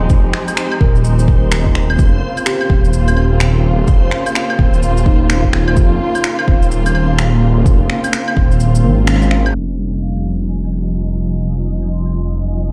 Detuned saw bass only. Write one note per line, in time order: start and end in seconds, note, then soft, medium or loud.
0.10 0.32 F1 loud
0.81 1.75 D#1 medium
1.75 1.97 D#1 medium
1.99 2.21 F1 loud
2.70 3.87 D#1 medium
3.88 4.10 F1 loud
4.59 5.76 D#1 medium
5.77 5.99 F1 loud
6.48 7.65 D#1 medium
7.66 7.88 F1 loud
8.37 8.86 D#1 medium
8.84 9.54 G#1 medium
9.55 12.72 F1 medium